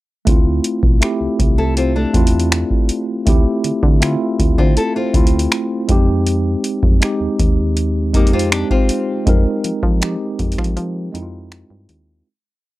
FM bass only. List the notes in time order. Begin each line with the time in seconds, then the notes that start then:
0.27 D2
0.83 B1
1.21 C2
1.39 C2
2.14 E2
3.27 D2
3.65 D3
3.83 D3
4.39 D2
4.58 D3
5.14 D2
5.89 F2
6.83 F2
7.21 D#2
7.39 D#2
8.14 F2
9.27 F2
9.65 F3
9.83 F3
10.39 F2
10.58 F3
10.77 F3
11.14 F2
11.70 G2
11.89 D#2